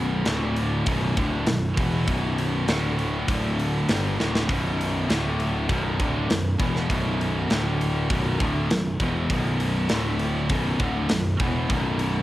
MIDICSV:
0, 0, Header, 1, 4, 480
1, 0, Start_track
1, 0, Key_signature, 2, "minor"
1, 0, Tempo, 602410
1, 1650, Time_signature, 4, 2, 24, 8
1, 9740, End_track
2, 0, Start_track
2, 0, Title_t, "Distorted electric guitar"
2, 0, Program_c, 0, 30
2, 0, Note_on_c, 0, 35, 93
2, 0, Note_on_c, 0, 42, 104
2, 0, Note_on_c, 0, 47, 107
2, 197, Note_off_c, 0, 35, 0
2, 201, Note_off_c, 0, 42, 0
2, 201, Note_on_c, 0, 38, 94
2, 204, Note_off_c, 0, 47, 0
2, 210, Note_on_c, 0, 45, 106
2, 211, Note_on_c, 0, 50, 108
2, 678, Note_off_c, 0, 38, 0
2, 682, Note_off_c, 0, 45, 0
2, 683, Note_off_c, 0, 50, 0
2, 699, Note_on_c, 0, 35, 86
2, 707, Note_on_c, 0, 42, 105
2, 708, Note_on_c, 0, 47, 96
2, 927, Note_off_c, 0, 35, 0
2, 931, Note_off_c, 0, 42, 0
2, 931, Note_off_c, 0, 47, 0
2, 938, Note_on_c, 0, 38, 100
2, 941, Note_on_c, 0, 45, 87
2, 943, Note_on_c, 0, 50, 109
2, 1166, Note_off_c, 0, 38, 0
2, 1168, Note_off_c, 0, 45, 0
2, 1169, Note_off_c, 0, 50, 0
2, 1175, Note_on_c, 0, 35, 62
2, 1178, Note_on_c, 0, 42, 74
2, 1364, Note_off_c, 0, 35, 0
2, 1366, Note_off_c, 0, 42, 0
2, 1424, Note_on_c, 0, 40, 78
2, 1428, Note_on_c, 0, 52, 103
2, 1430, Note_on_c, 0, 47, 81
2, 1650, Note_off_c, 0, 40, 0
2, 1652, Note_off_c, 0, 52, 0
2, 1653, Note_off_c, 0, 47, 0
2, 1660, Note_on_c, 0, 35, 88
2, 1667, Note_on_c, 0, 42, 109
2, 1670, Note_on_c, 0, 47, 110
2, 2129, Note_off_c, 0, 35, 0
2, 2132, Note_off_c, 0, 42, 0
2, 2134, Note_off_c, 0, 47, 0
2, 2140, Note_on_c, 0, 38, 94
2, 2144, Note_on_c, 0, 45, 92
2, 2144, Note_on_c, 0, 50, 98
2, 2606, Note_off_c, 0, 38, 0
2, 2611, Note_off_c, 0, 45, 0
2, 2611, Note_off_c, 0, 50, 0
2, 2616, Note_on_c, 0, 38, 104
2, 2620, Note_on_c, 0, 50, 102
2, 2621, Note_on_c, 0, 45, 88
2, 3087, Note_off_c, 0, 38, 0
2, 3089, Note_off_c, 0, 50, 0
2, 3090, Note_off_c, 0, 45, 0
2, 3102, Note_on_c, 0, 43, 87
2, 3103, Note_on_c, 0, 50, 95
2, 3107, Note_on_c, 0, 55, 89
2, 3328, Note_off_c, 0, 50, 0
2, 3330, Note_off_c, 0, 43, 0
2, 3333, Note_off_c, 0, 55, 0
2, 3333, Note_on_c, 0, 38, 92
2, 3333, Note_on_c, 0, 45, 100
2, 3338, Note_on_c, 0, 50, 80
2, 3566, Note_off_c, 0, 38, 0
2, 3566, Note_off_c, 0, 45, 0
2, 3568, Note_off_c, 0, 50, 0
2, 3575, Note_on_c, 0, 35, 83
2, 3576, Note_on_c, 0, 42, 108
2, 3580, Note_on_c, 0, 47, 115
2, 4046, Note_off_c, 0, 35, 0
2, 4046, Note_on_c, 0, 38, 95
2, 4053, Note_off_c, 0, 42, 0
2, 4053, Note_on_c, 0, 45, 96
2, 4054, Note_off_c, 0, 47, 0
2, 4054, Note_on_c, 0, 50, 114
2, 4523, Note_off_c, 0, 38, 0
2, 4526, Note_off_c, 0, 45, 0
2, 4526, Note_on_c, 0, 35, 91
2, 4527, Note_off_c, 0, 50, 0
2, 4531, Note_on_c, 0, 47, 103
2, 4533, Note_on_c, 0, 42, 89
2, 4762, Note_off_c, 0, 35, 0
2, 4765, Note_off_c, 0, 47, 0
2, 4766, Note_off_c, 0, 42, 0
2, 4774, Note_on_c, 0, 45, 104
2, 4775, Note_on_c, 0, 38, 105
2, 4780, Note_on_c, 0, 50, 108
2, 5006, Note_off_c, 0, 45, 0
2, 5007, Note_off_c, 0, 38, 0
2, 5009, Note_off_c, 0, 50, 0
2, 5013, Note_on_c, 0, 42, 74
2, 5015, Note_on_c, 0, 35, 58
2, 5205, Note_off_c, 0, 42, 0
2, 5206, Note_off_c, 0, 35, 0
2, 5253, Note_on_c, 0, 40, 94
2, 5256, Note_on_c, 0, 47, 92
2, 5257, Note_on_c, 0, 52, 95
2, 5479, Note_off_c, 0, 40, 0
2, 5482, Note_on_c, 0, 35, 97
2, 5483, Note_off_c, 0, 47, 0
2, 5488, Note_off_c, 0, 52, 0
2, 5490, Note_on_c, 0, 42, 106
2, 5493, Note_on_c, 0, 47, 114
2, 5960, Note_off_c, 0, 35, 0
2, 5964, Note_off_c, 0, 42, 0
2, 5965, Note_off_c, 0, 47, 0
2, 5970, Note_on_c, 0, 38, 93
2, 5978, Note_on_c, 0, 45, 98
2, 5978, Note_on_c, 0, 50, 105
2, 6444, Note_off_c, 0, 38, 0
2, 6448, Note_off_c, 0, 45, 0
2, 6448, Note_off_c, 0, 50, 0
2, 6455, Note_on_c, 0, 35, 93
2, 6461, Note_on_c, 0, 42, 105
2, 6461, Note_on_c, 0, 47, 97
2, 6686, Note_off_c, 0, 35, 0
2, 6689, Note_off_c, 0, 42, 0
2, 6689, Note_off_c, 0, 47, 0
2, 6695, Note_on_c, 0, 38, 103
2, 6696, Note_on_c, 0, 45, 102
2, 6704, Note_on_c, 0, 50, 110
2, 6926, Note_off_c, 0, 38, 0
2, 6927, Note_off_c, 0, 45, 0
2, 6931, Note_off_c, 0, 50, 0
2, 6941, Note_on_c, 0, 35, 55
2, 6941, Note_on_c, 0, 42, 70
2, 7128, Note_off_c, 0, 35, 0
2, 7128, Note_off_c, 0, 42, 0
2, 7177, Note_on_c, 0, 40, 96
2, 7180, Note_on_c, 0, 47, 101
2, 7186, Note_on_c, 0, 52, 106
2, 7407, Note_off_c, 0, 40, 0
2, 7408, Note_off_c, 0, 47, 0
2, 7411, Note_off_c, 0, 52, 0
2, 7427, Note_on_c, 0, 35, 97
2, 7430, Note_on_c, 0, 42, 100
2, 7431, Note_on_c, 0, 47, 101
2, 7888, Note_off_c, 0, 35, 0
2, 7892, Note_off_c, 0, 42, 0
2, 7892, Note_off_c, 0, 47, 0
2, 7892, Note_on_c, 0, 38, 88
2, 7895, Note_on_c, 0, 45, 113
2, 7895, Note_on_c, 0, 50, 115
2, 8363, Note_off_c, 0, 38, 0
2, 8365, Note_off_c, 0, 45, 0
2, 8365, Note_off_c, 0, 50, 0
2, 8370, Note_on_c, 0, 35, 94
2, 8376, Note_on_c, 0, 42, 97
2, 8380, Note_on_c, 0, 47, 105
2, 8602, Note_off_c, 0, 35, 0
2, 8605, Note_off_c, 0, 42, 0
2, 8605, Note_on_c, 0, 38, 91
2, 8607, Note_off_c, 0, 47, 0
2, 8608, Note_on_c, 0, 45, 93
2, 8612, Note_on_c, 0, 50, 104
2, 8840, Note_off_c, 0, 38, 0
2, 8841, Note_off_c, 0, 45, 0
2, 8843, Note_off_c, 0, 50, 0
2, 8845, Note_on_c, 0, 35, 59
2, 8847, Note_on_c, 0, 42, 67
2, 9039, Note_off_c, 0, 35, 0
2, 9040, Note_off_c, 0, 42, 0
2, 9083, Note_on_c, 0, 40, 93
2, 9088, Note_on_c, 0, 52, 107
2, 9089, Note_on_c, 0, 47, 89
2, 9315, Note_off_c, 0, 40, 0
2, 9316, Note_off_c, 0, 47, 0
2, 9318, Note_on_c, 0, 35, 107
2, 9321, Note_off_c, 0, 52, 0
2, 9324, Note_on_c, 0, 42, 95
2, 9325, Note_on_c, 0, 47, 108
2, 9740, Note_off_c, 0, 35, 0
2, 9740, Note_off_c, 0, 42, 0
2, 9740, Note_off_c, 0, 47, 0
2, 9740, End_track
3, 0, Start_track
3, 0, Title_t, "Picked electric bass"
3, 0, Program_c, 1, 34
3, 0, Note_on_c, 1, 23, 98
3, 173, Note_off_c, 1, 23, 0
3, 206, Note_on_c, 1, 26, 96
3, 656, Note_off_c, 1, 26, 0
3, 689, Note_on_c, 1, 23, 83
3, 912, Note_off_c, 1, 23, 0
3, 932, Note_on_c, 1, 26, 85
3, 1154, Note_off_c, 1, 26, 0
3, 1175, Note_on_c, 1, 23, 83
3, 1396, Note_off_c, 1, 23, 0
3, 1411, Note_on_c, 1, 28, 96
3, 1634, Note_off_c, 1, 28, 0
3, 1652, Note_on_c, 1, 23, 84
3, 2100, Note_off_c, 1, 23, 0
3, 2131, Note_on_c, 1, 26, 88
3, 2580, Note_off_c, 1, 26, 0
3, 2614, Note_on_c, 1, 26, 83
3, 3062, Note_off_c, 1, 26, 0
3, 3100, Note_on_c, 1, 31, 95
3, 3320, Note_off_c, 1, 31, 0
3, 3343, Note_on_c, 1, 26, 90
3, 3562, Note_off_c, 1, 26, 0
3, 3579, Note_on_c, 1, 23, 89
3, 4024, Note_off_c, 1, 23, 0
3, 4057, Note_on_c, 1, 26, 87
3, 4504, Note_off_c, 1, 26, 0
3, 4533, Note_on_c, 1, 23, 93
3, 4756, Note_off_c, 1, 23, 0
3, 4779, Note_on_c, 1, 26, 92
3, 5000, Note_off_c, 1, 26, 0
3, 5023, Note_on_c, 1, 23, 83
3, 5241, Note_off_c, 1, 23, 0
3, 5254, Note_on_c, 1, 28, 85
3, 5477, Note_off_c, 1, 28, 0
3, 5501, Note_on_c, 1, 23, 91
3, 5945, Note_off_c, 1, 23, 0
3, 5984, Note_on_c, 1, 26, 95
3, 6426, Note_off_c, 1, 26, 0
3, 6461, Note_on_c, 1, 23, 87
3, 6680, Note_off_c, 1, 23, 0
3, 6696, Note_on_c, 1, 26, 89
3, 6917, Note_off_c, 1, 26, 0
3, 6929, Note_on_c, 1, 23, 88
3, 7153, Note_off_c, 1, 23, 0
3, 7172, Note_on_c, 1, 28, 90
3, 7394, Note_off_c, 1, 28, 0
3, 7410, Note_on_c, 1, 23, 96
3, 7858, Note_off_c, 1, 23, 0
3, 7893, Note_on_c, 1, 26, 94
3, 8339, Note_off_c, 1, 26, 0
3, 8364, Note_on_c, 1, 23, 92
3, 8589, Note_off_c, 1, 23, 0
3, 8603, Note_on_c, 1, 26, 89
3, 8829, Note_off_c, 1, 26, 0
3, 8840, Note_on_c, 1, 23, 84
3, 9067, Note_off_c, 1, 23, 0
3, 9087, Note_on_c, 1, 28, 83
3, 9310, Note_off_c, 1, 28, 0
3, 9315, Note_on_c, 1, 23, 87
3, 9740, Note_off_c, 1, 23, 0
3, 9740, End_track
4, 0, Start_track
4, 0, Title_t, "Drums"
4, 202, Note_on_c, 9, 46, 65
4, 207, Note_on_c, 9, 38, 97
4, 282, Note_off_c, 9, 46, 0
4, 286, Note_off_c, 9, 38, 0
4, 449, Note_on_c, 9, 46, 53
4, 529, Note_off_c, 9, 46, 0
4, 687, Note_on_c, 9, 46, 76
4, 690, Note_on_c, 9, 36, 107
4, 766, Note_off_c, 9, 46, 0
4, 770, Note_off_c, 9, 36, 0
4, 932, Note_on_c, 9, 36, 99
4, 934, Note_on_c, 9, 46, 50
4, 1012, Note_off_c, 9, 36, 0
4, 1013, Note_off_c, 9, 46, 0
4, 1167, Note_on_c, 9, 46, 72
4, 1172, Note_on_c, 9, 38, 112
4, 1246, Note_off_c, 9, 46, 0
4, 1251, Note_off_c, 9, 38, 0
4, 1412, Note_on_c, 9, 36, 110
4, 1413, Note_on_c, 9, 46, 62
4, 1492, Note_off_c, 9, 36, 0
4, 1493, Note_off_c, 9, 46, 0
4, 1653, Note_on_c, 9, 46, 69
4, 1654, Note_on_c, 9, 36, 100
4, 1733, Note_off_c, 9, 46, 0
4, 1734, Note_off_c, 9, 36, 0
4, 1899, Note_on_c, 9, 46, 61
4, 1978, Note_off_c, 9, 46, 0
4, 2136, Note_on_c, 9, 46, 71
4, 2141, Note_on_c, 9, 38, 109
4, 2216, Note_off_c, 9, 46, 0
4, 2220, Note_off_c, 9, 38, 0
4, 2381, Note_on_c, 9, 46, 54
4, 2460, Note_off_c, 9, 46, 0
4, 2617, Note_on_c, 9, 36, 106
4, 2619, Note_on_c, 9, 46, 89
4, 2696, Note_off_c, 9, 36, 0
4, 2699, Note_off_c, 9, 46, 0
4, 2865, Note_on_c, 9, 46, 55
4, 2944, Note_off_c, 9, 46, 0
4, 3097, Note_on_c, 9, 46, 88
4, 3102, Note_on_c, 9, 38, 113
4, 3177, Note_off_c, 9, 46, 0
4, 3182, Note_off_c, 9, 38, 0
4, 3348, Note_on_c, 9, 38, 65
4, 3428, Note_off_c, 9, 38, 0
4, 3470, Note_on_c, 9, 38, 81
4, 3549, Note_off_c, 9, 38, 0
4, 3579, Note_on_c, 9, 36, 99
4, 3590, Note_on_c, 9, 46, 75
4, 3659, Note_off_c, 9, 36, 0
4, 3670, Note_off_c, 9, 46, 0
4, 3832, Note_on_c, 9, 46, 60
4, 3911, Note_off_c, 9, 46, 0
4, 4062, Note_on_c, 9, 46, 64
4, 4067, Note_on_c, 9, 38, 97
4, 4142, Note_off_c, 9, 46, 0
4, 4147, Note_off_c, 9, 38, 0
4, 4301, Note_on_c, 9, 46, 49
4, 4380, Note_off_c, 9, 46, 0
4, 4535, Note_on_c, 9, 36, 109
4, 4536, Note_on_c, 9, 46, 71
4, 4615, Note_off_c, 9, 36, 0
4, 4615, Note_off_c, 9, 46, 0
4, 4777, Note_on_c, 9, 36, 103
4, 4784, Note_on_c, 9, 46, 52
4, 4857, Note_off_c, 9, 36, 0
4, 4863, Note_off_c, 9, 46, 0
4, 5020, Note_on_c, 9, 46, 77
4, 5025, Note_on_c, 9, 38, 113
4, 5100, Note_off_c, 9, 46, 0
4, 5105, Note_off_c, 9, 38, 0
4, 5256, Note_on_c, 9, 36, 109
4, 5260, Note_on_c, 9, 46, 58
4, 5335, Note_off_c, 9, 36, 0
4, 5339, Note_off_c, 9, 46, 0
4, 5387, Note_on_c, 9, 38, 29
4, 5467, Note_off_c, 9, 38, 0
4, 5498, Note_on_c, 9, 36, 100
4, 5506, Note_on_c, 9, 46, 80
4, 5577, Note_off_c, 9, 36, 0
4, 5585, Note_off_c, 9, 46, 0
4, 5746, Note_on_c, 9, 46, 56
4, 5826, Note_off_c, 9, 46, 0
4, 5979, Note_on_c, 9, 46, 62
4, 5984, Note_on_c, 9, 38, 96
4, 6059, Note_off_c, 9, 46, 0
4, 6063, Note_off_c, 9, 38, 0
4, 6225, Note_on_c, 9, 46, 49
4, 6304, Note_off_c, 9, 46, 0
4, 6456, Note_on_c, 9, 36, 118
4, 6461, Note_on_c, 9, 46, 79
4, 6535, Note_off_c, 9, 36, 0
4, 6540, Note_off_c, 9, 46, 0
4, 6696, Note_on_c, 9, 36, 102
4, 6704, Note_on_c, 9, 46, 58
4, 6776, Note_off_c, 9, 36, 0
4, 6784, Note_off_c, 9, 46, 0
4, 6938, Note_on_c, 9, 46, 79
4, 6942, Note_on_c, 9, 38, 116
4, 7017, Note_off_c, 9, 46, 0
4, 7022, Note_off_c, 9, 38, 0
4, 7172, Note_on_c, 9, 36, 100
4, 7173, Note_on_c, 9, 46, 58
4, 7252, Note_off_c, 9, 36, 0
4, 7253, Note_off_c, 9, 46, 0
4, 7410, Note_on_c, 9, 36, 107
4, 7411, Note_on_c, 9, 46, 82
4, 7490, Note_off_c, 9, 36, 0
4, 7490, Note_off_c, 9, 46, 0
4, 7650, Note_on_c, 9, 46, 66
4, 7729, Note_off_c, 9, 46, 0
4, 7881, Note_on_c, 9, 46, 76
4, 7886, Note_on_c, 9, 38, 104
4, 7961, Note_off_c, 9, 46, 0
4, 7966, Note_off_c, 9, 38, 0
4, 8121, Note_on_c, 9, 46, 53
4, 8201, Note_off_c, 9, 46, 0
4, 8362, Note_on_c, 9, 46, 82
4, 8364, Note_on_c, 9, 36, 118
4, 8441, Note_off_c, 9, 46, 0
4, 8444, Note_off_c, 9, 36, 0
4, 8603, Note_on_c, 9, 36, 102
4, 8603, Note_on_c, 9, 46, 51
4, 8682, Note_off_c, 9, 46, 0
4, 8683, Note_off_c, 9, 36, 0
4, 8837, Note_on_c, 9, 46, 76
4, 8842, Note_on_c, 9, 38, 116
4, 8917, Note_off_c, 9, 46, 0
4, 8922, Note_off_c, 9, 38, 0
4, 9081, Note_on_c, 9, 46, 53
4, 9082, Note_on_c, 9, 36, 118
4, 9160, Note_off_c, 9, 46, 0
4, 9162, Note_off_c, 9, 36, 0
4, 9321, Note_on_c, 9, 36, 103
4, 9321, Note_on_c, 9, 46, 76
4, 9400, Note_off_c, 9, 36, 0
4, 9400, Note_off_c, 9, 46, 0
4, 9555, Note_on_c, 9, 46, 56
4, 9634, Note_off_c, 9, 46, 0
4, 9740, End_track
0, 0, End_of_file